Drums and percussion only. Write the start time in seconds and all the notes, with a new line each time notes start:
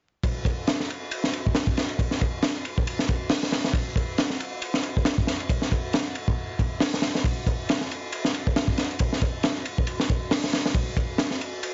0.24 kick, ride
0.45 kick, ride
0.67 snare, ride
0.80 snare
0.90 ride
1.11 ride
1.24 snare
1.33 ride
1.47 kick
1.55 snare, ride
1.67 kick
1.77 snare, ride
1.89 ride
1.99 kick, ride
2.11 snare
2.21 kick, ride
2.43 snare, ride
2.65 ride
2.78 kick
2.87 ride
2.99 snare
3.08 kick, ride
3.29 snare, open hi-hat
3.43 snare
3.52 snare, ride
3.64 snare
3.74 kick, ride
3.96 kick, ride
4.18 snare, ride
4.30 snare
4.40 ride
4.62 ride
4.74 snare
4.83 ride
4.97 kick
5.05 snare, ride
5.18 kick
5.27 snare, ride
5.40 ride
5.50 kick, ride
5.62 snare
5.72 kick, ride
5.93 snare, ride
6.15 ride
6.28 kick
6.59 kick, ride
6.80 snare, open hi-hat
6.94 snare
7.02 snare, ride
7.15 snare
7.24 kick, ride
7.47 kick, ride
7.69 snare, ride
7.81 snare
7.91 ride
8.12 ride
8.25 snare
8.34 ride
8.47 kick
8.56 snare, ride
8.68 kick
8.78 snare, ride
8.91 ride
8.99 kick, ride
9.13 snare
9.21 kick, ride
9.43 snare, ride
9.65 ride
9.78 kick
9.87 ride
10.00 snare
10.09 kick, ride
10.31 snare, open hi-hat
10.44 snare
10.53 snare, ride
10.66 snare
10.74 kick, ride
10.97 kick, ride
11.18 snare, ride
11.31 snare
11.41 ride
11.63 ride